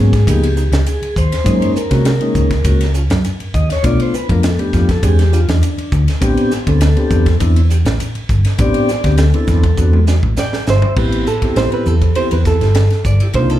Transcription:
Already playing: G#2 F#3 A#3 B3 C#4 G#4
0.13 kick, snare, ride
0.26 C#2 F3 A#3 B3 D#4 G4, kick, hi-hat pedal, ride
0.43 ride
0.56 B3 D#4, hi-hat pedal
0.72 C#2, snare, ride
0.86 G#4, hi-hat pedal, ride
1.02 muted fingered electric bass stroke, ride
1.16 D#2 C5, kick, hi-hat pedal
1.32 snare, ride
1.44 F#2 G#3 A#3 C#4 D#4, kick, hi-hat pedal, ride
1.62 ride
1.76 A#4, muted fingered electric bass stroke, hi-hat pedal
1.90 C3 G#3 A#3 C#4 F#4, kick, snare, ride
2.05 A#4, snare, hi-hat pedal, ride
2.20 G#3 A#3 C#4 D#4, ride
2.35 C#2, kick, hi-hat pedal
2.51 kick, snare, ride
2.64 C#2 G#3 A#3 C#4 F#4, kick, hi-hat pedal, ride
2.81 snare, ride
2.94 C#4 F4, hi-hat pedal
3.10 F#2, snare, ride
3.25 hi-hat pedal, ride
3.40 muted fingered electric bass stroke, ride
3.54 D#2 D#5, kick, hi-hat pedal
3.70 C#5, snare, ride
3.83 B1 A3 B3 D4 F4 D5, kick, hi-hat pedal, ride
4.00 C5, ride
4.13 B4, muted fingered electric bass stroke, hi-hat pedal
4.29 F2 A3 B3 D4 F4 A#4, kick, ride
4.43 A4, snare, hi-hat pedal, ride
4.59 A3 B3 D4 G4, ride
4.73 F2 F4, kick, snare, hi-hat pedal
4.89 A4, kick, snare, ride
5.03 E2 G#3 C4 D4 G4 G#4, kick, hi-hat pedal, ride
5.19 G4, snare, ride
5.32 D4 F4 G4, hi-hat pedal
5.48 E2 D4, snare, ride
5.63 hi-hat pedal, ride
5.78 muted fingered electric bass stroke, ride
5.92 D2, kick, hi-hat pedal
6.08 snare, ride
6.21 A1 B3 C4 D4 G4, kick, hi-hat pedal, ride
6.37 ride
6.51 muted fingered electric bass stroke, snare, hi-hat pedal
6.67 D2 B3 C4 D4 A4, kick, ride
6.81 A4, snare, hi-hat pedal, ride
6.97 B3 C4 D4 G4, ride
7.10 E2, kick, hi-hat pedal
7.26 kick, snare, ride
7.40 E2 B3 C4 D4 E4, kick, hi-hat pedal, ride
7.56 ride
7.70 D4 G4, hi-hat pedal
7.85 A1, snare, ride
8.00 hi-hat pedal, ride
8.15 muted fingered electric bass stroke, ride
8.29 G1, kick, hi-hat pedal
8.45 snare, ride
8.58 A1 B3 C4 D4 G4 D5, kick, hi-hat pedal, ride
8.74 ride
8.89 muted fingered electric bass stroke, snare, hi-hat pedal
9.04 D2 B3 C4 D4 G4, kick, snare, ride
9.18 A4, snare, hi-hat pedal, ride
9.34 B3 C4 D4 E4, ride
9.47 E2, kick, snare, hi-hat pedal
9.63 kick, ride
9.77 E2 B3 C4 D4 F#4, kick, hi-hat pedal
9.93 high tom
10.07 D4 F#4, snare, hi-hat pedal
10.23 A1, kick
10.37 D5 G5, snare, hi-hat pedal
10.53 muted fingered electric bass stroke, snare
10.66 G1 C5 E5, snare, hi-hat pedal
10.82 floor tom
10.96 A1 B3 C4 E4 G4 B4, kick, crash
11.12 ride
11.26 A4, hi-hat pedal
11.42 B3 C4 E4 G4, kick, ride
11.56 A1 C5, snare, ride
11.72 B4, muted fingered electric bass stroke, ride
11.85 E2 A4, hi-hat pedal
12.02 kick, ride
12.15 B3 C4 E4 G4 C5, muted fingered electric bass stroke, ride
12.31 E2 B4, ride
12.45 B3 C4 E4 A4, kick, snare, hi-hat pedal
12.61 G1 E4 G4, snare, ride
12.75 snare, ride
12.90 snare, ride
13.04 G1 D5, kick, hi-hat pedal
13.20 E4 G4, muted fingered electric bass stroke, ride
13.33 C2 A#3 D4 D#4 F4 C5, kick, ride
13.50 A4, ride

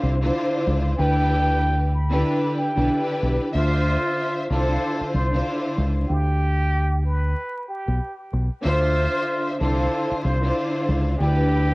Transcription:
Already playing: D3 D4 E4 F4 C5
0.03 C2
0.21 D3 D4 E4 F4 C5
0.67 C#2
0.98 D2 D3 D4 E4 G4 B4 G5
1.94 B5
2.10 D3 D4 E4 G4 B4
2.57 G5
2.75 B1 D3 D4 E4 G4 B4
3.23 B1
3.52 D2 D3 D4 F4 C5 E5
4.49 C2 D3 D4 E4 F4 A4 C5
5.01 muted fingered electric bass stroke
5.13 C2 C5
5.32 D3 D4 E4 F4 C5
5.78 C#2
6.09 D2 G4
7.05 B4
7.68 G4
7.88 B1
8.33 B1
8.63 D2 D3 D4 F4 C5 E5
9.59 C2 D3 D4 E4 F4 A4 C5
10.11 muted fingered electric bass stroke
10.24 C2 C5
10.42 D3 D4 E4 F4 C5
10.88 C#2
11.19 D2 D3 D4 E4 G4 B4

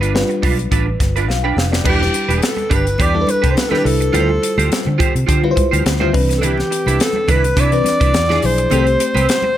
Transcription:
Already playing: G1 G3 D4 F4 B4
0.01 D4 F4 B4, closed hi-hat
0.14 G3 D4 F4 B4, snare
0.29 muted clean electric guitar stroke, closed hi-hat
0.42 B1 D4 F4 B4, kick, open hi-hat
0.58 muted clean electric guitar stroke, closed hi-hat
0.71 A1 D4 F4 B4, kick, closed hi-hat
0.87 muted clean electric guitar stroke
1.00 G1, muted clean electric guitar stroke, kick, snare, closed hi-hat
1.16 D4 F4 B4, closed hi-hat
1.28 B1 F5, muted clean electric guitar stroke, snare
1.43 D4 F4 B4 G5
1.57 F1 F5, muted clean electric guitar stroke, snare
1.72 D5, muted clean electric guitar stroke, snare
1.84 E1 G3 D4 E4 G4 B4, kick, crash, muted conga, low conga
1.89 G4
2.01 muted clean electric guitar stroke, snare
2.14 muted clean electric guitar stroke, closed hi-hat
2.28 E1 D4 G4 B4, closed hi-hat, high conga
2.37 G#4
2.42 A4, snare, closed hi-hat, muted conga
2.57 muted clean electric guitar stroke, closed hi-hat, muted conga, high conga
2.70 G1 D4 G4 B4, kick, closed hi-hat, low conga
2.75 B4
2.85 muted clean electric guitar stroke, closed hi-hat
2.98 E2 D4 G4 B4 D5, kick, closed hi-hat, muted conga
3.13 G3 D4 E4 A4, muted clean electric guitar stroke, muted conga
3.21 B4
3.27 B4, muted clean electric guitar stroke, closed hi-hat, high conga
3.42 C2 D4 G4 B4, kick, closed hi-hat
3.51 C5
3.56 B4, muted clean electric guitar stroke, snare, closed hi-hat, muted conga
3.69 G3 D4 E4 G4 A4 B4, muted conga, low conga
3.74 snare
3.78 B4
3.84 C2 G3 D4 E4 A4 B4, muted clean electric guitar stroke, open hi-hat
4.00 muted clean electric guitar stroke, closed hi-hat
4.13 D2 G3 E4 F4 G4 B4 C5, closed hi-hat, muted conga, low conga
4.20 C5
4.29 muted clean electric guitar stroke, muted conga
4.43 muted clean electric guitar stroke, closed hi-hat
4.58 D2 F4 G4 C5, closed hi-hat, high conga
4.71 muted fingered electric bass stroke, snare, closed hi-hat
4.85 D3, muted clean electric guitar stroke, muted conga, high conga
4.98 F4 G4 C5, kick, closed hi-hat, low conga
5.14 C3, muted clean electric guitar stroke, closed hi-hat
5.27 D3 F4 G4 C5, kick, closed hi-hat
5.43 G3 E4 F4 B4, muted clean electric guitar stroke, muted conga
5.51 C5
5.56 muted clean electric guitar stroke, kick, closed hi-hat, high conga
5.71 D2 F4 G4 C5, closed hi-hat
5.85 D2, muted clean electric guitar stroke, snare, closed hi-hat
6.00 G3 E4 F4 G4 C5, muted conga, low conga
6.13 C2 E3 C4 D4 B4, muted clean electric guitar stroke, kick, open hi-hat
6.29 muted clean electric guitar stroke, snare, closed hi-hat
6.38 D4 A4, low conga
6.42 E4 G4 B4, closed hi-hat
6.58 muted clean electric guitar stroke, snare, muted conga
6.71 muted clean electric guitar stroke, closed hi-hat
6.86 C2 D4 E4 B4, closed hi-hat, high conga
6.99 A4, snare, closed hi-hat, muted conga
7.13 muted clean electric guitar stroke, muted conga, high conga
7.28 C2 D4 E4 B4, kick, closed hi-hat, low conga
7.44 muted clean electric guitar stroke, closed hi-hat
7.56 C3 D4 E4 B4 D5, kick, closed hi-hat, muted conga
7.72 E3 C4 D4 B4, muted clean electric guitar stroke, closed hi-hat
7.84 muted clean electric guitar stroke, snare, closed hi-hat, high conga
8.00 C2 D4 E4 B4, kick, closed hi-hat
8.14 E2, muted clean electric guitar stroke, snare, closed hi-hat
8.29 F3 D4 E4 F4 G#4 D5, snare, muted conga, low conga
8.42 B1 F3 D4 E4 G#4 C5, muted clean electric guitar stroke, open hi-hat
8.58 muted clean electric guitar stroke, closed hi-hat
8.70 C2 A3 C4 G4 A4 B4, closed hi-hat, low conga
8.79 C5
8.87 muted clean electric guitar stroke, closed hi-hat
9.00 muted clean electric guitar stroke, closed hi-hat
9.14 C2 C4 G4 B4, closed hi-hat, high conga
9.29 snare, closed hi-hat
9.42 muted clean electric guitar stroke, muted conga, high conga

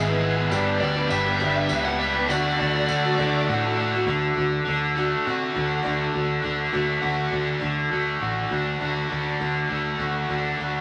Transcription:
Already playing: G#1 E3 G#3 B3 G#4 B4 E5 G#5 E6
0.08 E3 G#3 B3 G#4, tambourine
0.19 G#3 B3 G#4
0.23 E3
0.36 E3 G#3 B3 G#4
0.51 G1 G2 D3 G3 B3 D4 G4 B4 D5 G5 D6, tambourine
0.78 D2 G3 B3 D4 G4 D5
0.83 G4
0.96 G3 B3 D4 G4
1.07 G1 G3 B3 D4 G4 E5, tambourine
1.25 G3 B3 D4 G4
1.37 G1 G2 D3 G3 G4
1.41 B3 D4 G4 B4 E5
1.69 C#2 G3 B3 D4 G4, tambourine
1.85 G3 B3 D4 G4 F#5, tambourine
1.98 G3 B3 D4 G4 E5
2.15 G3 B3 D4 G4
2.26 D3 A3 F#4 D5, tambourine
2.30 D2 D3 A3 D4 F#4 A4 D5 D6
2.56 D2 D3 A3 F#4
2.61 D4 F#4
2.75 A3 D4 F#4
2.85 D3 A3 D4 F#4, tambourine
2.89 D2
3.05 A3 D4 F#4
3.14 F#4
3.18 D2 D3 A3 D4 F#4 A4 D5
3.45 D3 A3 D4 F#4 F#5
3.49 A2 D3 A3 D4 F#4
3.64 A3 D4 F#4
3.74 A3 D4 F#4 D5
3.95 A3 D4 F#4
4.06 D2 D3 A3 D4 F#4 A4 D5 D6
4.11 F#5
4.37 D2 A3 D4 F#4
4.65 D2 D3
4.69 D3 A3 D4 F#4
4.94 A3 D4 F#4
4.98 D3 A3
5.27 C3 D3 A3 D4 F#4
5.55 D2 A3 D4 F#4
5.83 D2 D3 A3 D4 F#4
6.13 D2 A3 D4 F#4
6.43 D2 D3 A3 D4 F#4
6.73 D2 D3 A3 D4 F#4
7.01 D2 D3 A3 D4 F#4
7.30 D2 A3 D4 F#4
7.59 D2 D3 A3 D4 F#4
7.66 A4 D5 F#5 D6
7.90 D2 A3 D4 F#4
8.20 A1 D3 A3 D4 F#4
8.50 D2 D3 A3 D4 F#4
8.79 D2 D3 A3 D4 F#4
9.09 D2 A3 D4 F#4
9.40 D2 D3 A3 D4 F#4
9.69 D2 A3 D4 F#4
9.99 D2 D3 A3 D4 F#4
10.29 D2 D3 A3 D4 F#4
10.58 D2 D3 A3 D4 F#4

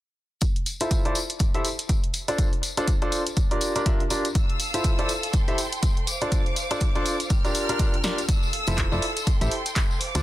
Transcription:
0.41 kick, closed hi-hat, tambourine
0.56 closed hi-hat
0.66 open hi-hat, tambourine
0.80 E4 F4 A4 C5 E5, closed hi-hat, tambourine
0.91 kick, closed hi-hat, tambourine
1.05 E4 F4 A4 C5 D5, closed hi-hat
1.15 open hi-hat, tambourine
1.30 closed hi-hat, tambourine
1.39 kick, closed hi-hat, tambourine
1.54 E4 G4 A4 C5 E5, closed hi-hat
1.65 open hi-hat, tambourine
1.79 closed hi-hat, tambourine
1.89 kick, closed hi-hat, tambourine
2.04 closed hi-hat
2.14 open hi-hat, tambourine
2.28 D4 F4 A4 C5 D5, closed hi-hat, tambourine
2.38 kick, closed hi-hat, tambourine
2.53 closed hi-hat
2.63 open hi-hat, tambourine
2.77 D4 F4 A4 C5 D5, closed hi-hat, tambourine
2.87 kick, closed hi-hat, tambourine
3.02 D4 F4 A4 C5 D5, closed hi-hat
3.12 open hi-hat, tambourine
3.27 closed hi-hat, tambourine
3.37 kick, closed hi-hat, tambourine
3.51 D4 F4 G4 A#4 D5, closed hi-hat
3.61 open hi-hat, tambourine
3.75 D4 F4 G4 A#4 D5, closed hi-hat, tambourine
3.86 D4 F4 G4 A#4 E5, kick, closed hi-hat, tambourine
4.00 closed hi-hat
4.10 D4 F4 G4 A#4 D5, open hi-hat, tambourine
4.25 closed hi-hat, tambourine
4.35 A4 F5 E6, kick, closed hi-hat, tambourine
4.50 closed hi-hat
4.60 open hi-hat, tambourine
4.74 E4 F4 A4 C5 E5, closed hi-hat, tambourine
4.84 kick, closed hi-hat, tambourine
4.99 E4 F4 A4 C5 D5, closed hi-hat
5.09 open hi-hat, tambourine
5.23 closed hi-hat, tambourine
5.33 G5 C6, kick, closed hi-hat, tambourine
5.48 E4 G4 A4 C5 E5, closed hi-hat
5.58 open hi-hat, tambourine
5.72 closed hi-hat, tambourine
5.83 kick, closed hi-hat, tambourine
5.97 closed hi-hat
6.07 C5 F5 D6, open hi-hat, tambourine
6.22 D4 F4 A4 C5 D5, closed hi-hat
6.32 kick, closed hi-hat, tambourine
6.46 closed hi-hat
6.56 open hi-hat, tambourine
6.71 D4 F4 A4 C5 D5, closed hi-hat, tambourine
6.80 kick, closed hi-hat, tambourine
6.95 D4 F4 A4 C5 D5, closed hi-hat
7.06 open hi-hat, tambourine
7.20 closed hi-hat, tambourine
7.30 A#4 G5 F6, kick, closed hi-hat, tambourine
7.45 D4 F4 G4 A#4 D5, closed hi-hat, tambourine
7.55 open hi-hat, tambourine
7.69 D4 F4 G4 A#4 D5, closed hi-hat, tambourine
7.79 D4 F4 G4 A#4 D5, kick, closed hi-hat, tambourine
7.94 closed hi-hat
8.04 D4 F4 G4 A#4 D5, snare, open hi-hat, tambourine
8.18 closed hi-hat, tambourine
8.29 A4 F5 E6, kick, closed hi-hat, tambourine
8.43 tambourine
8.53 open hi-hat
8.67 F1 E4 F4 A4 C5 E5, closed hi-hat, tambourine
8.78 kick, clap, closed hi-hat, tambourine
8.92 F1 E4 F4 A4 C5 D5, tambourine
9.02 open hi-hat
9.17 closed hi-hat, tambourine
9.27 G5 C6, kick, closed hi-hat, tambourine
9.41 A1 E4 G4 A4 C5 E5, closed hi-hat, tambourine
9.51 open hi-hat
9.66 closed hi-hat, tambourine
9.75 kick, clap, closed hi-hat, tambourine
9.91 tambourine
10.01 C5 F5 D6, open hi-hat
10.15 D2 D4 F4 A4 C5 D5, closed hi-hat, tambourine

